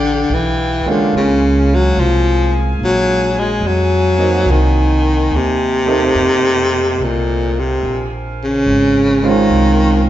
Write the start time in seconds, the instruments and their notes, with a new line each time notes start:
Already playing: upright bass A1, baritone saxophone D3, saxophone section G4 F5 G5
0.30 upright bass B1
0.34 baritone saxophone E3
0.86 baritone saxophone D3, grand piano G#3 A#3 C#4 F4, muted upright bass stroke
1.13 upright bass C#2, saxophone section G#4 G#5
1.17 baritone saxophone C#3
1.75 baritone saxophone F#3
1.97 upright bass C2, baritone saxophone F3
2.79 upright bass A#1
2.84 baritone saxophone F#3
3.39 baritone saxophone G#3
3.61 upright bass F2
3.67 baritone saxophone F#3
4.17 grand piano A#3 C4 D#4 F#4
4.46 upright bass C2, saxophone section D#4 C5
4.52 baritone saxophone D#3
5.29 upright bass D#2
5.36 baritone saxophone C3
5.86 grand piano A3 A#3 C4 D#4
6.14 upright bass F2, saxophone section D#4 A4 C5 F5
6.98 upright bass C2
7.03 baritone saxophone A#2
7.59 baritone saxophone C3
7.82 upright bass A#1, saxophone section A#4 F5 G#5
8.44 baritone saxophone C#3
8.66 upright bass G#1
9.23 grand piano G#3 C4 C#4 F4
9.29 baritone saxophone D#3
9.50 upright bass C2